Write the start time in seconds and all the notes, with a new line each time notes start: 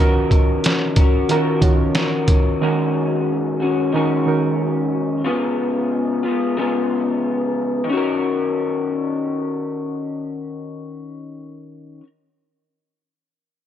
Already playing: D#3 C#4 F4 B4
0.00 D#3 C#4 F#4 A#4
0.31 kick, closed hi-hat
0.64 snare, closed hi-hat
0.96 C#4 F#4 A#4, kick, closed hi-hat
1.29 D#3 C#4 F4 F#4 A#4, closed hi-hat
1.33 A#4
1.61 D#3 C#4 F4 F#4 C#5, kick, closed hi-hat
1.95 D#3 C#4 F#4 A#4, snare, closed hi-hat
2.28 kick, closed hi-hat
2.61 D#3 G#3 C#4 D#4 F#4 A#4
3.60 G#3 C#4 F#4
3.92 D#3 G#3 C#4 D#4 F#4 A#4
3.97 F#4
4.26 D#3 C#4 D#4 F#4 A#4
5.24 C#3 G#3 B3 F4
6.23 G#3 B3 F4
6.57 C#3 G#3 B3
6.61 F4
7.84 D#3
7.89 C#4 F#4
7.97 A#4